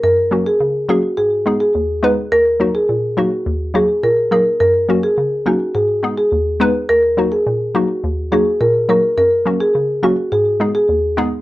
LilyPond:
<<
  \new Staff \with { instrumentName = "Marimba" } { \time 4/4 \key ees \minor \tempo 4 = 105 bes'16 r8 aes'16 r8 ges'16 r16 aes'16 r8 aes'16 r4 | bes'16 r8 aes'16 r8 ges'16 r8. aes'16 r16 bes'16 r16 bes'16 r16 | bes'16 r8 aes'16 r8 ges'16 r16 aes'16 r8 aes'16 r4 | bes'16 r8 aes'16 r8 ges'16 r8. aes'16 r16 bes'16 r16 bes'16 r16 |
bes'16 r8 aes'16 r8 ges'16 r16 aes'16 r8 aes'16 r4 | }
  \new Staff \with { instrumentName = "Synth pluck" } { \time 4/4 \key ees \minor << { r8 <ges bes des' ges'>8 r8 <ges bes des' aes'>8 r8 <aes ces' ees' aes'>8 r8 <aes ces' ees' ces''>8 | r8 <ges bes ees' ges'>8 r8 <ges bes ees' ges'>8 r8 <ges bes ees' ges'>8 r8 <ges bes ees' aes'>8 | r8 <ges bes des' ges'>8 r8 <ges bes des' ees'>8 r8 <aes ces' ees' aes'>8 r8 <aes ces' ees' ces''>8 | r8 <ges bes ees' ges'>8 r8 <ges bes ees' ges'>8 r8 <ges bes ees' ges'>8 r8 <ges bes ees' ges'>8 |
r8 <ges bes des' ges'>8 r8 <ges bes des' ges'>8 r8 <aes ces' ees' aes'>8 r8 <aes ces' ees' aes'>8 | } \\ { ges,4 des4 aes,4 ees,4 | ees,4 bes,4 ees,4 bes,4 | ges,4 des4 aes,4 ees,4 | ees,4 bes,4 ees,4 bes,4 |
ges,4 des4 aes,4 ees,4 | } >> }
>>